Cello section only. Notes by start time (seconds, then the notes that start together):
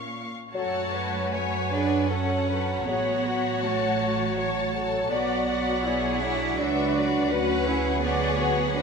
Already playing: A#2
0.54 A3
1.71 D4
2.09 C#4
2.86 B3
3.62 A3
5.10 B3
6.22 E4
6.58 D4
7.31 C#4
8.03 B3
8.77 D4